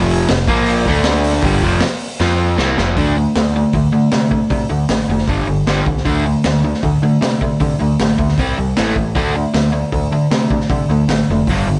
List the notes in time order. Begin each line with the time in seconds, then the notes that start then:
Already playing: F1 F2 C3 F3
0.10 open hi-hat
0.28 F1 F2 C3, snare, open hi-hat
0.48 A#1 A#2 F3 A#3, kick, open hi-hat
0.66 open hi-hat
0.85 D2 D3 A3 D4, kick, open hi-hat
1.04 snare, open hi-hat
1.14 snare
1.24 open hi-hat
1.33 snare
1.42 G1 G2 D3 G3, kick, open hi-hat
1.61 F1 F2 C3 F3, kick, open hi-hat
1.81 snare, open hi-hat
2.00 open hi-hat
2.20 F2 F3 C4 F4, snare
2.58 C2 C3 G3 C4, snare
2.77 F1 F2 C3 F3, snare
2.97 D2 D3 A3 D4, kick, open hi-hat
3.17 D3 A3
3.35 D2 D3 A3, snare, open hi-hat
3.56 D3 A3
3.73 D2 D3 A3, kick, open hi-hat
3.92 D3 A3
4.12 C3 D3 A3, snare, open hi-hat
4.31 D3 A3, kick
4.50 C3 D3 A3, kick, open hi-hat
4.70 D2 D3 A3
4.89 A1 D3 A3, snare, open hi-hat
5.07 F1 D3 A3
5.18 snare
5.27 G1 G2 D3 G3, kick, open hi-hat
5.47 G1 G2 D3
5.66 G1 G2 D3 G3, snare, open hi-hat
5.86 C2 G2 D3, kick
5.98 snare
6.05 D2 D3 A3 D4, kick, open hi-hat
6.26 D3 A3
6.44 D2 D3 A3, snare, open hi-hat
6.64 D3 A3
6.74 snare
6.83 D2 D3 A3, kick, open hi-hat
7.02 D3 A3
7.21 C3 D3 A3, snare, open hi-hat
7.41 D3 A3, kick
7.60 C3 D3 A3, kick, open hi-hat
7.79 D2 D3 A3
8.00 A1 D3 A3, snare, open hi-hat
8.18 D2 D3 A3, kick
8.29 snare
8.38 C2 C3 G3 C4, kick, open hi-hat
8.57 C2 C3 G3
8.77 A1 A2 E3 A3, snare, open hi-hat
8.96 A1 A2 E3, kick
9.15 D2 D3 A3 D4, kick, open hi-hat
9.36 D3 A3
9.54 D2 D3 A3, snare, open hi-hat
9.72 D3 A3
9.92 D2 D3 A3, kick, open hi-hat
10.11 D3 A3
10.31 C3 D3 A3, snare, open hi-hat
10.50 D3 A3, kick
10.61 snare
10.69 C3 D3 A3, kick, open hi-hat
10.89 D2 D3 A3
11.08 A1 D3 A3, snare, open hi-hat
11.28 F1 D3 A3
11.47 G1 G2 D3 G3, kick, open hi-hat
11.66 G1 G2 D3